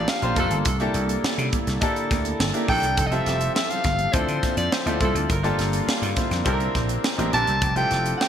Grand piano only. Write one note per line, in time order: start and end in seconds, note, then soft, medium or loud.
0.00 0.22 A#3 medium
0.00 0.22 D4 medium
0.00 0.23 F4 medium
0.00 0.23 G4 medium
0.00 0.68 G#4 medium
0.00 0.38 A4 medium
0.22 0.33 A#3 medium
0.22 0.34 D4 medium
0.22 0.34 F4 medium
0.22 0.34 G4 medium
0.22 0.34 C5 loud
0.36 0.66 A#3 medium
0.36 0.66 D4 medium
0.36 0.66 F4 medium
0.36 0.66 G4 medium
0.36 0.66 A4 medium
0.80 1.57 A#3 medium
0.80 1.58 D4 medium
0.80 1.58 E4 medium
0.80 1.58 G4 medium
0.80 1.58 A4 loud
1.81 2.37 A#3 medium
1.81 2.37 D4 medium
1.81 2.37 E4 medium
1.81 2.37 G4 medium
1.81 2.37 A4 loud
2.54 2.65 A#3 medium
2.54 2.65 D4 medium
2.54 2.65 E4 medium
2.54 2.65 G4 medium
2.54 2.66 A#4 medium
2.68 2.97 A#3 medium
2.68 2.98 D4 medium
2.68 2.98 E4 medium
2.68 2.98 G4 medium
2.68 2.98 A4 medium
3.11 3.89 C4 medium
3.11 3.89 E4 medium
3.11 3.89 F4 medium
3.11 3.89 G4 medium
3.11 3.89 A4 medium
4.13 4.69 C4 medium
4.13 4.69 D4 medium
4.13 4.69 E4 medium
4.13 4.69 F4 medium
4.13 4.69 A4 medium
4.86 4.97 C4 medium
4.86 4.97 D4 medium
4.86 4.97 E4 medium
4.86 4.98 F4 medium
4.86 4.98 A4 medium
5.00 5.29 C4 medium
5.00 5.29 D4 medium
5.00 5.30 E4 medium
5.00 5.30 F4 medium
5.00 5.30 A4 medium
5.43 6.21 A#3 loud
5.43 5.88 D4 medium
5.43 5.88 F4 medium
5.43 5.88 G4 medium
5.43 5.86 A4 loud
5.87 6.02 A4 medium
5.87 6.01 F5 medium
6.02 6.16 F4 medium
6.02 6.16 D5 medium
6.17 6.31 E4 medium
6.17 6.31 C5 medium
6.31 6.44 D4 medium
6.31 6.51 A#4 medium
6.45 7.00 C4 loud
6.45 7.01 D4 medium
6.45 7.01 E4 medium
6.45 7.01 G4 medium
6.45 6.52 A4 medium
6.52 7.04 A#4 loud
7.18 7.29 C4 medium
7.18 7.29 D4 medium
7.18 7.29 E4 medium
7.18 7.30 G4 medium
7.18 7.30 A#4 medium
7.32 7.62 C4 medium
7.32 7.62 D4 medium
7.32 7.62 E4 medium
7.32 7.62 G4 medium
7.32 7.62 A#4 medium
7.75 8.28 C4 medium
7.75 8.28 E4 medium
7.75 8.28 F4 medium
7.75 8.28 G4 medium
7.75 8.28 A4 medium